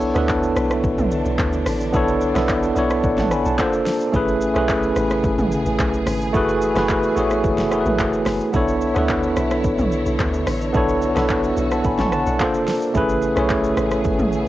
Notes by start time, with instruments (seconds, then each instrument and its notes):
Already playing: log drum bass B1, string section D3 E3 A3 D4, tine electric piano B3 D4 E4 A4 C#5
0.01 shaker
0.14 log drum bass D2, tine electric piano B3 D4 E4 A4 B4, cross-stick, shaker
0.29 kick, clap, shaker
0.43 shaker
0.56 log drum bass B1, cross-stick, shaker
0.70 cross-stick, shaker
0.84 log drum bass A1, kick, shaker
0.98 log drum bass B1, mid tom, shaker
1.11 shaker
1.25 log drum bass B1, shaker
1.39 log drum bass D2, kick, clap, shaker
1.53 shaker
1.66 log drum bass A1, cross-stick, open hi-hat, shaker
1.81 shaker
1.93 log drum bass B1, tine electric piano B3 D4 E4 A4 C#5, string section B3, kick, shaker
2.08 shaker
2.21 shaker
2.34 log drum bass B1, tine electric piano B3 D4 E4 A4 D5, cross-stick, snare, shaker
2.49 kick, clap, shaker
2.63 shaker
2.75 log drum bass B1, tine electric piano B3 D4 E4 A4 C#5, shaker
2.90 cross-stick, shaker
3.04 log drum bass A1, tine electric piano D5 F#5, kick, shaker
3.18 log drum bass A1, tine electric piano F#5 A5, snare, mid tom, shaker
3.31 tine electric piano G#5 B5, cross-stick, shaker
3.46 log drum bass B1, tine electric piano F#5 A5, shaker
3.57 string section C3 A#3, tine electric piano A#3 D4 F4 A4 C5, kick, clap, shaker
3.73 shaker
3.86 snare, open hi-hat, shaker
4.01 shaker
4.13 log drum bass A1, string section C#3 B3 G#4, tine electric piano A3 C#4 E4 G#4 B4, kick, shaker
4.28 shaker
4.41 shaker
4.54 log drum bass B1, tine electric piano A3 C#4 E4 G#4 B4, cross-stick, shaker
4.69 kick, clap, shaker
4.83 shaker
4.96 log drum bass A1, cross-stick, shaker
5.11 cross-stick, shaker
5.24 log drum bass G#1, kick, shaker
5.38 log drum bass A1, mid tom, shaker
5.52 shaker
5.66 log drum bass A1, shaker
5.79 log drum bass B1, kick, clap, shaker
5.93 shaker
6.06 log drum bass G#1, cross-stick, open hi-hat, shaker
6.21 shaker
6.33 log drum bass F#1, string section E3 B3, tine electric piano A3 E4 F#4 G#4 B4, kick, shaker
6.49 shaker
6.62 shaker
6.74 log drum bass F#1, tine electric piano A3 E4 F#4 G#4 B4, cross-stick, snare, shaker
6.89 kick, clap, shaker
7.03 shaker
7.15 log drum bass A1, tine electric piano A3 E4 F#4 G#4 C#5, shaker
7.31 cross-stick, shaker
7.44 log drum bass F#1, kick, shaker
7.58 log drum bass F#1, snare, shaker
7.70 tine electric piano A3 E4 F#4 G#4 A#4, cross-stick, shaker
7.81 tine electric piano B4
7.86 log drum bass A1, mid tom, shaker
7.99 log drum bass F#1, kick, clap, shaker
8.13 shaker
8.26 log drum bass F#1, cross-stick, snare, open hi-hat, shaker
8.41 shaker
8.53 log drum bass B1, string section D3 E4 A4 C#5, tine electric piano B3 D4 E4 A4 C#5, kick, shaker
8.68 shaker
8.81 shaker
8.94 log drum bass D2, tine electric piano B3 D4 E4 A4 B4, cross-stick, shaker
9.09 kick, clap, shaker
9.23 shaker
9.37 log drum bass B1, cross-stick, shaker
9.51 cross-stick, shaker
9.64 log drum bass A1, kick, shaker
9.79 log drum bass B1, mid tom, shaker
9.92 shaker
10.06 log drum bass B1, shaker
10.19 log drum bass D2, kick, clap, shaker
10.34 shaker
10.47 log drum bass A1, cross-stick, open hi-hat, shaker
10.61 shaker
10.73 log drum bass B1, tine electric piano B3 D4 E4 A4 C#5, string section F#4, kick, shaker
10.89 shaker
11.02 shaker
11.15 log drum bass B1, tine electric piano B3 D4 E4 A4 E5, cross-stick, snare, shaker
11.29 kick, clap, shaker
11.44 shaker
11.57 log drum bass B1, shaker
11.71 tine electric piano F#5 A5, cross-stick, shaker
11.84 log drum bass A1, tine electric piano G#5 B5, kick, shaker
11.99 log drum bass A1, tine electric piano A5 C#6, snare, mid tom, shaker
12.12 tine electric piano F#5 A5, cross-stick, shaker
12.26 log drum bass B1, tine electric piano D5 F#5, shaker
12.38 string section C3 A#3 D4, tine electric piano A#3 D4 F4 A4 C5, kick, clap, shaker
12.54 shaker
12.67 snare, open hi-hat, shaker
12.82 shaker
12.94 log drum bass A1, string section C#3 A3 B3 G#4, tine electric piano A3 C#4 E4 G#4 B4, kick, shaker
13.09 shaker
13.22 shaker
13.35 log drum bass B1, tine electric piano A3 C#4 E4 G#4 C#5, cross-stick, shaker
13.49 kick, clap, shaker
13.64 shaker
13.77 log drum bass A1, cross-stick, shaker
13.91 cross-stick, shaker
14.04 log drum bass G#1, kick, shaker
14.19 log drum bass A1, mid tom, shaker
14.32 shaker